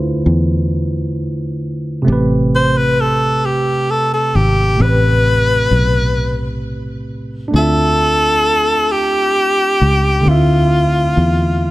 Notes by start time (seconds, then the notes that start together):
Already playing: D2 D3 A3 E4 F4 B4 C5
0.26 E2
2.02 C3 A3
2.07 A1 C4 G4
2.12 B4
2.55 C5
2.77 B4
3.01 A4
3.45 G4
3.91 A4
4.14 A4
4.35 G#1 G4
4.75 A2 A3
4.80 A1 C4 G4 B4
4.85 B4
5.71 B1
7.48 A3 D4
7.53 D2 C4 F4 A4
7.58 E5
8.91 G4
9.81 C#2
10.21 D3 A3
10.25 D2 C4 E4 F4
10.31 F4 E5
11.17 E2